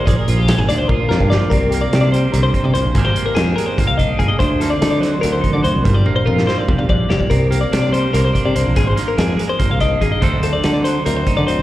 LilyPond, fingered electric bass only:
\new Staff \with { instrumentName = "Fingered electric bass" } { \clef bass \time 7/8 \key c \minor \tempo 4 = 145 bes,,16 r16 bes,,8. aes,,16 d,8 r8 f,16 g,8 r16 | c,4 c4 c,8 r16 c16 c,16 bes,,16 | aes,,8 r8 f,8 r8 g,,16 c,8. g,,16 r16 | d,4 d4 d,8 r16 d16 d,16 c,16 |
g,,8 r8 f,8 r8 f,,16 bes,,8. f,,16 r16 | c,4 c4 c,8 r16 c16 c,16 bes,,16 | aes,,8 r8 f,8 r8 g,,16 c,8. aes,,16 r16 | d,4 d4 d,8 r16 d16 d,16 c,16 | }